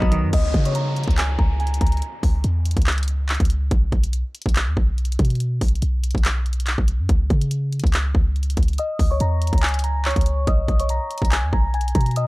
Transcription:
Already playing: F#3 B3 D#4 F#4 D#5 D#6
0.02 B1, kick
0.12 D#3, closed hi-hat
0.23 F#2
0.33 C#2 D#5 D#6, kick, closed hi-hat, crash, downlifter
0.54 C#3, kick, closed hi-hat
0.65 C#5 C#6, closed hi-hat
0.75 A#5 A#6, closed hi-hat
0.97 closed hi-hat
1.04 closed hi-hat
1.08 C#2, kick, closed hi-hat
1.18 G#5 G#6, clap, closed hi-hat
1.39 C#2 A#5 A#6, kick
1.60 G#5 G#6, closed hi-hat
1.67 closed hi-hat
1.74 closed hi-hat
1.81 C#2 A#5 A#6, kick, closed hi-hat
1.87 closed hi-hat
1.92 closed hi-hat
1.97 closed hi-hat
2.02 closed hi-hat
2.23 C#2, kick, open hi-hat
2.44 E2, closed hi-hat
2.66 closed hi-hat
2.71 closed hi-hat
2.77 C#2, kick, closed hi-hat
2.82 closed hi-hat
2.87 clap, closed hi-hat
2.92 closed hi-hat
2.98 closed hi-hat
3.03 closed hi-hat
3.08 closed hi-hat
3.29 clap, closed hi-hat
3.35 closed hi-hat
3.40 C#2, kick, closed hi-hat
3.45 closed hi-hat
3.50 closed hi-hat
3.71 B1, kick, closed hi-hat
3.92 B1, kick, closed hi-hat
4.04 closed hi-hat
4.13 closed hi-hat
4.35 closed hi-hat
4.42 closed hi-hat
4.46 B1, kick, closed hi-hat
4.56 clap, closed hi-hat
4.67 D#2
4.77 B1, kick
4.98 closed hi-hat
5.05 closed hi-hat
5.12 closed hi-hat
5.19 B2, kick, closed hi-hat
5.25 closed hi-hat
5.30 closed hi-hat
5.35 closed hi-hat
5.40 closed hi-hat
5.61 B1, kick, closed hi-hat, open hi-hat
5.68 closed hi-hat
5.75 closed hi-hat
5.82 B1, closed hi-hat
6.04 closed hi-hat
6.11 closed hi-hat
6.15 B1, kick, closed hi-hat
6.25 clap, closed hi-hat
6.46 closed hi-hat
6.53 closed hi-hat
6.60 closed hi-hat
6.67 clap, closed hi-hat
6.78 B1, kick
6.88 closed hi-hat
6.99 F#2
7.09 C#2, kick, closed hi-hat
7.30 C#3, kick, closed hi-hat
7.42 closed hi-hat
7.51 closed hi-hat
7.73 closed hi-hat
7.80 closed hi-hat
7.84 C#2, kick, closed hi-hat
7.94 clap, closed hi-hat
8.15 C#2, kick
8.36 closed hi-hat
8.43 closed hi-hat
8.50 closed hi-hat
8.57 C#2, kick, closed hi-hat
8.63 closed hi-hat
8.68 closed hi-hat
8.73 closed hi-hat
8.78 D#5 D#6, closed hi-hat
8.99 C#2, kick, open hi-hat
9.11 C#5 C#6
9.20 E2 A#5 A#6, closed hi-hat
9.42 closed hi-hat
9.47 closed hi-hat
9.53 C#2, kick, closed hi-hat
9.58 closed hi-hat
9.62 G#5 G#6, clap, closed hi-hat
9.68 closed hi-hat
9.74 closed hi-hat
9.79 closed hi-hat
9.84 A#5 A#6, closed hi-hat
10.05 C#5 C#6, clap, closed hi-hat
10.11 closed hi-hat
10.16 C#2, kick, closed hi-hat
10.21 closed hi-hat
10.26 closed hi-hat
10.47 B1 D#5 D#6, kick, closed hi-hat
10.68 B1, kick, closed hi-hat
10.80 C#5 C#6, closed hi-hat
10.89 A#5 A#6, closed hi-hat
11.11 closed hi-hat
11.18 closed hi-hat
11.22 B1, kick, closed hi-hat
11.31 G#5 G#6, clap, closed hi-hat
11.43 D#2
11.53 B1 A#5 A#6, kick
11.74 G#5 G#6, closed hi-hat
11.81 closed hi-hat
11.88 closed hi-hat
11.95 B2 A#5 A#6, kick, closed hi-hat
12.01 closed hi-hat
12.06 closed hi-hat
12.11 closed hi-hat
12.16 D#5 D#6, closed hi-hat

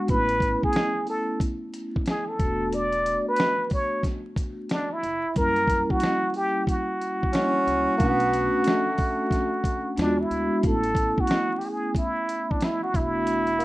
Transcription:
0.07 A1 A3 B3 C#4 E4 B4, kick, closed hi-hat
0.29 closed hi-hat
0.40 kick, closed hi-hat
0.63 G#4, kick
0.73 snare, closed hi-hat
1.07 A4, open hi-hat
1.40 kick, closed hi-hat
1.74 closed hi-hat
1.96 kick
2.06 G#4, snare, closed hi-hat
2.29 A4
2.39 E1 A3 B3 D4 F#4, kick, closed hi-hat
2.73 D5, closed hi-hat
2.92 closed hi-hat
3.06 closed hi-hat
3.28 B4
3.36 snare, closed hi-hat
3.70 C#5, kick, open hi-hat
4.03 kick, snare, closed hi-hat
4.36 kick, closed hi-hat
4.69 D4, snare, closed hi-hat
4.93 E4
5.03 F#1, closed hi-hat
5.35 F#2 G3 A#3 C#4 E4 A#4, kick, closed hi-hat
5.56 closed hi-hat
5.67 kick, closed hi-hat
5.90 F#4, kick
6.00 snare, closed hi-hat
6.34 G4, open hi-hat
6.67 F#4, kick, closed hi-hat
7.01 closed hi-hat
7.23 kick
7.33 G3 A#3 C#4 D4, snare, closed hi-hat
7.41 E4
7.67 C#2, closed hi-hat
7.98 B1 A3 B3 C#4 D4 F#4, kick, closed hi-hat
8.20 closed hi-hat
8.33 closed hi-hat
8.64 A3, snare, closed hi-hat
8.98 kick, open hi-hat
9.31 kick, snare, closed hi-hat
9.64 kick, closed hi-hat
9.96 E2 G#3 B3 D4 F4, snare, closed hi-hat
10.04 F#4
10.21 E4
10.30 D2, closed hi-hat
10.62 A1 A3 B3 C#4 E4, kick, closed hi-hat
10.66 A4
10.83 closed hi-hat
10.95 kick, closed hi-hat
11.18 F#4, kick
11.27 snare, closed hi-hat
11.59 G4, open hi-hat
11.66 G#4
11.95 E4, kick, closed hi-hat
12.29 closed hi-hat
12.51 D4, kick
12.61 E4, snare, closed hi-hat
12.83 F#4
12.92 E1 A3 B3 D4 E4 F#4, kick, closed hi-hat
13.27 closed hi-hat
13.47 closed hi-hat
13.59 B3, closed hi-hat

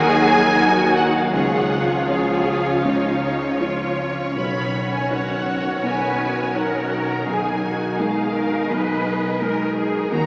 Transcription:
Already playing: D#2 D#3 F#3 D#4 F#4 G#4 A#4 D#5 G#5
0.22 F#3
0.58 F#3 D#4 F#4 A#4
0.97 D#5 F#5
1.16 F5
1.33 C#2 C#3 F3 C#4 F4 G#4 C#5 F#5
1.72 C#4
2.08 F3 F4 G#4 C#5 F5
2.46 C#5
2.84 C#2 C#3 D#4
3.23 C#4
3.60 F3 F4 C#5
3.98 C#5
4.36 B1 B2 D#3 F#4 B5
4.74 B3
4.94 G#5
5.11 F#3 D#4 C#5 F#5
5.47 F#4
5.83 B1 B2 B4 G#5
6.19 B3
6.55 F#3 D#4 A#4 C#5 F#5
6.91 F#4
7.10 A#5
7.26 B1 B2 D#4 G#4 A#4 G#5
7.63 B3 F#4
7.99 G#3 D#4 G#4 A#4 F5
8.35 G#4 A#4
8.70 B1 B2 B4 D#5
9.06 B3
9.41 G#3 D#4 A#4
9.76 G#4
10.12 D#2 D#3 F#4 A#5

